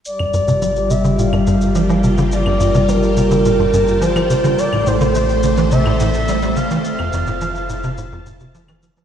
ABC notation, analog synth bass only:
X:1
M:4/4
L:1/16
Q:1/4=106
K:Gdor
V:1 name="Analog synth bass" clef=bass
z G,, G,, C, G, z C, D, B,, G,, G,, z F, F, C, D, | z G,, G,, C, G, z C, D, B,, G,, G,, z F, F, C, D, | z A,, A,, D, A, z D, E, C, A,, A,, z G, G, D, E, | z F,, F,, A,, F, z A,, C, A,, F,, A,, C, F, E, F, F, |]